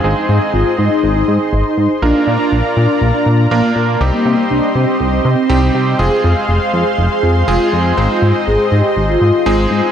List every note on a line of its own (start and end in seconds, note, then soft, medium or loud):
0.00 1.99 G#4 medium
0.00 1.98 C5 medium
0.00 1.98 C6 medium
0.04 0.14 G#1 loud
0.04 1.50 G#3 medium
0.04 1.50 C4 medium
0.04 1.50 D#4 medium
0.04 1.50 G#4 medium
0.04 2.00 D#5 medium
0.16 0.47 D#4 medium
0.29 0.39 G#2 loud
0.53 0.64 G#1 medium
0.53 0.74 F4 medium
0.78 0.89 G#2 medium
0.78 1.09 D#4 loud
1.03 1.24 G#1 loud
1.15 1.92 D#4 loud
1.28 1.38 G#2 medium
1.53 1.63 G#1 medium
1.78 1.88 G#2 medium
2.02 2.13 A#1 loud
2.02 3.48 A#3 medium
2.02 2.33 D4 loud
2.02 3.48 D4 medium
2.02 3.48 F4 medium
2.02 3.99 F4 medium
2.02 3.48 A#4 medium
2.02 3.99 A#4 medium
2.02 3.99 D5 medium
2.02 3.99 A#5 medium
2.27 2.37 A#2 loud
2.39 2.70 D4 loud
2.52 2.62 A#1 medium
2.77 2.87 A#2 medium
2.77 3.07 D4 medium
3.02 3.12 A#1 medium
3.14 3.45 D4 loud
3.26 3.47 A#2 medium
3.51 3.61 A#1 medium
3.51 3.72 A#3 medium
3.51 3.98 A#3 medium
3.51 3.98 D4 medium
3.51 3.98 F4 medium
3.51 3.98 A#4 loud
3.76 3.96 A#2 medium
4.01 4.11 C2 loud
4.01 5.47 G3 medium
4.01 5.47 C4 medium
4.01 5.47 D#4 medium
4.01 5.47 G4 medium
4.01 5.97 G4 medium
4.01 9.92 C5 medium
4.01 5.97 D#5 medium
4.01 9.92 C6 medium
4.13 4.44 A#3 medium
4.26 4.36 C3 loud
4.50 4.61 C2 medium
4.50 4.71 D4 medium
4.75 4.85 C3 medium
4.75 5.06 C4 medium
5.00 5.20 C2 medium
5.13 5.89 C4 loud
5.25 5.35 C3 loud
5.49 5.70 C2 medium
5.49 5.96 G3 medium
5.49 5.96 C4 medium
5.49 5.96 D#4 medium
5.49 5.96 G4 loud
5.75 5.95 C3 medium
5.99 6.09 F1 loud
5.99 7.45 G#3 medium
5.99 9.92 G#3 medium
5.99 7.45 C4 medium
5.99 7.45 F4 medium
5.99 7.45 G#4 medium
5.99 6.30 G#4 loud
5.99 7.96 F5 medium
6.24 6.34 F2 loud
6.36 6.67 G#4 loud
6.49 6.59 F1 medium
6.73 6.84 F2 medium
6.73 7.04 G#4 medium
6.98 7.08 F1 medium
7.11 7.41 G#4 medium
7.23 7.43 F2 medium
7.48 7.58 F1 medium
7.48 7.94 G#3 medium
7.48 7.94 C4 medium
7.48 7.94 F4 medium
7.48 7.68 F4 medium
7.48 7.94 G#4 loud
7.73 7.93 F2 medium
7.97 8.08 G#1 loud
7.97 9.43 G#3 medium
7.97 9.43 C4 medium
7.97 9.43 D#4 medium
7.97 9.43 C5 medium
7.97 9.92 D#5 medium
8.10 8.40 F4 medium
8.22 8.32 G#2 loud
8.47 8.57 G#1 medium
8.47 8.68 G#4 medium
8.72 8.82 G#2 medium
8.72 9.03 G4 medium
8.96 9.17 G#1 medium
9.09 9.86 F4 loud
9.21 9.32 G#2 medium
9.46 9.67 G#1 loud
9.46 9.92 G#3 medium
9.46 9.92 C4 medium
9.46 9.92 D#4 medium
9.46 9.92 G#4 loud
9.71 9.81 G#2 medium